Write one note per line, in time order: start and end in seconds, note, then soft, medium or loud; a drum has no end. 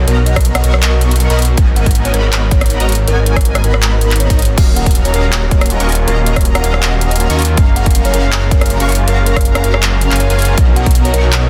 0.07 0.62 B1 loud
0.07 0.62 B3 medium
0.07 0.62 F#4 medium
0.07 0.22 A#4 medium
0.07 0.62 A#4 medium
0.07 0.62 D#5 medium
0.07 0.62 A#5 loud
0.07 closed hi-hat medium
0.26 0.33 D#5 medium
0.26 closed hi-hat medium
0.36 kick medium
0.36 cross-stick medium
0.36 closed hi-hat soft
0.41 closed hi-hat medium
0.45 closed hi-hat medium
0.55 0.62 F#5 medium
0.55 cross-stick medium
0.55 closed hi-hat medium
0.64 1.28 B1 medium
0.64 1.28 B3 medium
0.64 1.28 F#4 medium
0.64 1.28 A#4 medium
0.64 1.28 D#5 medium
0.64 0.93 D#5 medium
0.64 1.28 C#6 loud
0.64 closed hi-hat medium
0.74 cross-stick medium
0.83 clap loud
0.83 closed hi-hat medium
1.01 closed hi-hat medium
1.11 closed hi-hat medium
1.16 closed hi-hat medium
1.20 closed hi-hat medium
1.30 1.56 B1 loud
1.30 1.40 B3 loud
1.30 1.40 F#4 medium
1.30 1.40 A#4 medium
1.30 1.40 D#5 medium
1.30 1.40 B5 loud
1.30 closed hi-hat medium
1.39 closed hi-hat soft
1.42 closed hi-hat medium
1.45 closed hi-hat medium
1.58 2.12 G#1 loud
1.58 2.12 B3 medium
1.58 2.12 F#4 medium
1.58 2.12 A#4 medium
1.58 2.12 D#5 medium
1.58 2.12 G#5 loud
1.58 kick loud
1.58 closed hi-hat medium
1.76 1.90 F#5 medium
1.76 closed hi-hat medium
1.86 kick medium
1.86 closed hi-hat soft
1.91 closed hi-hat medium
1.95 closed hi-hat medium
2.05 2.12 C#5 medium
2.05 closed hi-hat medium
2.14 2.78 G#1 loud
2.14 2.78 B3 medium
2.14 2.78 F#4 medium
2.14 2.28 A#4 loud
2.14 2.78 A#4 medium
2.14 2.78 D#5 medium
2.14 2.78 B5 loud
2.14 closed hi-hat medium
2.33 clap loud
2.33 closed hi-hat medium
2.51 2.65 C#5 loud
2.51 kick loud
2.51 closed hi-hat medium
2.61 cross-stick medium
2.61 closed hi-hat medium
2.66 closed hi-hat medium
2.70 closed hi-hat medium
2.80 3.06 G#1 loud
2.80 2.90 B3 loud
2.80 2.90 F#4 medium
2.80 2.90 A#4 medium
2.80 2.90 D#5 medium
2.80 2.90 A#5 loud
2.80 closed hi-hat medium
2.89 closed hi-hat medium
2.92 closed hi-hat medium
2.95 closed hi-hat medium
3.08 3.62 G#1 loud
3.08 3.62 B3 medium
3.08 3.62 F#4 medium
3.08 3.22 A#4 medium
3.08 3.62 A#4 medium
3.08 3.62 D#5 medium
3.08 3.62 G#5 loud
3.08 closed hi-hat medium
3.26 3.33 A#4 medium
3.26 closed hi-hat medium
3.36 kick medium
3.36 cross-stick medium
3.36 closed hi-hat soft
3.41 closed hi-hat medium
3.45 closed hi-hat medium
3.55 cross-stick medium
3.55 closed hi-hat medium
3.64 4.28 G#1 medium
3.64 4.28 B3 medium
3.64 4.28 F#4 medium
3.64 4.28 A#4 medium
3.64 3.78 A#4 medium
3.64 4.28 D#5 medium
3.64 4.28 B5 loud
3.64 closed hi-hat medium
3.74 cross-stick medium
3.83 clap loud
3.83 closed hi-hat medium
3.83 swell medium
4.01 closed hi-hat medium
4.11 clap soft
4.11 closed hi-hat medium
4.16 closed hi-hat medium
4.20 4.58 C#5 loud
4.20 closed hi-hat medium
4.30 4.56 G#1 loud
4.30 4.40 B3 loud
4.30 4.40 F#4 medium
4.30 4.40 A#4 medium
4.30 4.40 D#5 medium
4.30 4.40 A#5 loud
4.30 kick medium
4.30 closed hi-hat medium
4.39 closed hi-hat medium
4.42 closed hi-hat medium
4.45 closed hi-hat medium
4.56 5.12 D#1 loud
4.56 5.11 F#3 medium
4.56 5.11 A#3 medium
4.56 5.12 C#4 medium
4.56 5.12 F#4 medium
4.56 5.12 A#4 medium
4.56 5.12 D#5 medium
4.56 5.13 F5 medium
4.56 5.12 A#5 loud
4.56 kick loud
4.56 closed hi-hat medium
4.56 crash medium
4.76 4.90 F#5 medium
4.76 closed hi-hat medium
4.86 kick medium
4.86 closed hi-hat medium
4.91 closed hi-hat medium
4.95 closed hi-hat medium
5.05 5.12 C#5 medium
5.05 closed hi-hat medium
5.12 5.78 D#1 loud
5.12 5.67 F#3 medium
5.12 5.68 A#3 medium
5.12 5.78 C#4 medium
5.12 5.69 C#4 medium
5.12 5.78 F#4 medium
5.12 5.28 A#4 medium
5.12 5.78 A#4 medium
5.12 5.78 D#5 medium
5.12 5.69 F5 loud
5.12 5.78 A#5 loud
5.12 closed hi-hat medium
5.33 clap loud
5.33 closed hi-hat medium
5.51 5.65 C#5 loud
5.51 kick loud
5.51 closed hi-hat medium
5.61 cross-stick medium
5.61 closed hi-hat medium
5.66 5.86 F#3 medium
5.66 closed hi-hat medium
5.70 5.87 A#3 medium
5.70 5.87 C#4 medium
5.70 5.87 F4 medium
5.70 closed hi-hat medium
5.80 6.06 D#1 loud
5.80 5.90 C#4 loud
5.80 5.90 F#4 medium
5.80 5.90 A#4 medium
5.80 5.90 D#5 medium
5.80 5.90 C#6 loud
5.80 closed hi-hat medium
5.88 6.04 F#3 medium
5.88 6.05 A#3 medium
5.88 6.06 C#4 medium
5.88 6.06 F4 medium
5.88 open hi-hat medium
5.92 closed hi-hat medium
5.95 closed hi-hat medium
6.06 6.62 D#1 loud
6.06 6.61 F#3 medium
6.06 6.61 A#3 medium
6.06 6.62 C#4 medium
6.06 6.62 F#4 medium
6.06 6.62 A#4 medium
6.06 6.22 A#4 loud
6.06 6.62 D#5 medium
6.06 6.63 F5 medium
6.06 6.62 A#5 loud
6.06 closed hi-hat medium
6.26 6.33 D#5 medium
6.26 closed hi-hat medium
6.36 6.42 D#5 medium
6.36 kick medium
6.36 cross-stick medium
6.36 closed hi-hat soft
6.41 closed hi-hat medium
6.45 closed hi-hat medium
6.55 6.62 F#5 medium
6.55 cross-stick medium
6.55 closed hi-hat medium
6.62 7.28 D#1 loud
6.62 7.17 F#3 loud
6.62 7.18 A#3 medium
6.62 7.28 C#4 medium
6.62 7.19 C#4 medium
6.62 7.28 F#4 medium
6.62 7.28 A#4 medium
6.62 7.28 D#5 medium
6.62 6.93 D#5 medium
6.62 7.28 A#5 loud
6.62 closed hi-hat medium
6.66 7.19 F5 loud
6.74 cross-stick medium
6.83 clap loud
6.83 closed hi-hat medium
7.01 closed hi-hat medium
7.11 closed hi-hat medium
7.16 7.36 F#3 medium
7.16 closed hi-hat medium
7.20 7.37 A#3 medium
7.20 7.37 C#4 medium
7.20 7.37 F4 medium
7.20 closed hi-hat medium
7.30 7.56 D#2 loud
7.30 7.40 C#4 loud
7.30 7.40 F#4 medium
7.30 7.40 A#4 medium
7.30 7.40 D#5 medium
7.30 7.40 C#6 loud
7.30 closed hi-hat medium
7.38 7.55 F#3 medium
7.38 7.55 A#3 medium
7.38 7.56 C#4 medium
7.38 7.56 F4 loud
7.38 open hi-hat medium
7.42 closed hi-hat medium
7.45 closed hi-hat medium
7.56 8.12 F#1 loud
7.56 8.11 G#3 medium
7.56 8.11 A#3 medium
7.56 8.12 C#4 medium
7.56 8.12 F#4 medium
7.56 8.12 A#4 medium
7.56 8.12 F5 medium
7.56 8.13 F5 medium
7.56 8.12 A#5 loud
7.56 kick loud
7.56 closed hi-hat medium
7.76 7.90 F#5 medium
7.76 closed hi-hat medium
7.86 kick medium
7.86 closed hi-hat soft
7.91 closed hi-hat medium
7.95 closed hi-hat medium
8.05 8.12 C#5 medium
8.05 closed hi-hat medium
8.12 8.78 F#1 loud
8.12 8.67 G#3 medium
8.12 8.68 A#3 medium
8.12 8.78 C#4 medium
8.12 8.69 C#4 medium
8.12 8.78 F#4 medium
8.12 8.28 A#4 medium
8.12 8.78 A#4 medium
8.12 8.78 F5 medium
8.12 8.78 A#5 loud
8.12 closed hi-hat medium
8.16 8.69 F5 loud
8.32 clap loud
8.32 closed hi-hat medium
8.51 8.65 C#5 loud
8.51 kick loud
8.51 closed hi-hat medium
8.61 cross-stick medium
8.61 closed hi-hat medium
8.66 8.86 G#3 medium
8.66 closed hi-hat medium
8.70 8.87 A#3 medium
8.70 8.87 C#4 medium
8.70 8.87 F4 medium
8.70 closed hi-hat medium
8.80 9.06 F#1 loud
8.80 8.90 C#4 loud
8.80 8.90 F#4 medium
8.80 8.90 A#4 medium
8.80 8.90 F5 medium
8.80 8.90 C#6 loud
8.80 closed hi-hat medium
8.88 9.04 G#3 medium
8.88 9.05 A#3 medium
8.88 9.06 C#4 medium
8.88 9.06 F4 medium
8.88 open hi-hat medium
8.92 closed hi-hat medium
8.95 closed hi-hat medium
9.06 9.62 F#1 loud
9.06 9.61 G#3 medium
9.06 9.61 A#3 medium
9.06 9.62 C#4 medium
9.06 9.62 F#4 medium
9.06 9.22 A#4 medium
9.06 9.62 A#4 medium
9.06 9.62 F5 medium
9.06 9.62 A#5 loud
9.06 closed hi-hat medium
9.10 9.63 F5 medium
9.26 9.33 A#4 medium
9.26 closed hi-hat medium
9.36 kick medium
9.36 cross-stick medium
9.36 closed hi-hat soft
9.41 closed hi-hat medium
9.45 closed hi-hat medium
9.55 cross-stick medium
9.55 closed hi-hat medium
9.62 10.09 F#1 loud
9.62 10.17 G#3 medium
9.62 10.18 A#3 medium
9.62 10.09 C#4 medium
9.62 10.19 C#4 medium
9.62 10.09 F#4 medium
9.62 9.78 A#4 loud
9.62 10.09 A#4 medium
9.62 10.09 F5 medium
9.62 10.09 A#5 loud
9.62 closed hi-hat medium
9.66 10.19 F5 loud
9.74 cross-stick medium
9.83 clap loud
9.83 closed hi-hat medium
10.01 closed hi-hat medium
10.11 10.28 F#1 medium
10.11 10.28 C#4 medium
10.11 10.28 F#4 medium
10.11 10.28 A#4 medium
10.11 10.28 F5 medium
10.11 10.28 G#5 medium
10.11 clap soft
10.11 closed hi-hat soft
10.16 10.36 G#3 medium
10.16 closed hi-hat medium
10.20 10.37 A#3 medium
10.20 10.37 C#4 medium
10.20 10.37 F4 medium
10.20 10.58 C#5 medium
10.20 closed hi-hat medium
10.30 10.56 F#1 loud
10.30 10.56 C#4 loud
10.30 10.56 F#4 medium
10.30 10.56 A#4 medium
10.30 10.56 F5 medium
10.30 10.56 G#5 loud
10.30 closed hi-hat medium
10.38 10.55 G#3 medium
10.38 10.55 A#3 medium
10.38 10.56 C#4 medium
10.38 10.56 F4 loud
10.38 open hi-hat medium
10.42 closed hi-hat medium
10.45 closed hi-hat medium
10.56 11.12 B1 loud
10.56 11.11 F#3 medium
10.56 11.12 B3 medium
10.56 11.13 D#4 medium
10.56 11.12 F#4 medium
10.56 11.12 D#5 medium
10.56 kick loud
10.56 closed hi-hat medium
10.76 10.90 F#5 medium
10.76 closed hi-hat medium
10.86 kick medium
10.86 closed hi-hat soft
10.91 closed hi-hat medium
10.95 closed hi-hat medium
11.05 11.12 C#5 medium
11.05 closed hi-hat medium
11.12 11.50 B1 loud
11.12 11.50 F#3 medium
11.12 11.50 B3 medium
11.12 11.50 C#4 medium
11.12 11.50 F#4 medium
11.12 11.50 A#4 medium
11.12 11.28 A#4 medium
11.12 11.50 A#4 medium
11.12 11.50 D#5 medium
11.12 11.50 C#6 loud
11.12 closed hi-hat medium
11.16 11.50 D#4 loud
11.33 clap loud
11.33 closed hi-hat medium